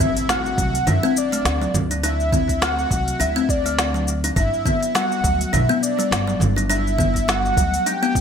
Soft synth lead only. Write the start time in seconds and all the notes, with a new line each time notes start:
Already playing: E5
0.30 F#5
0.88 E5
1.18 D5
2.04 E5
2.62 F#5
3.20 E5
3.50 D5
4.37 E5
4.95 F#5
5.53 E5
5.76 E5
5.83 D5
6.70 E5
7.29 F#5
7.87 G5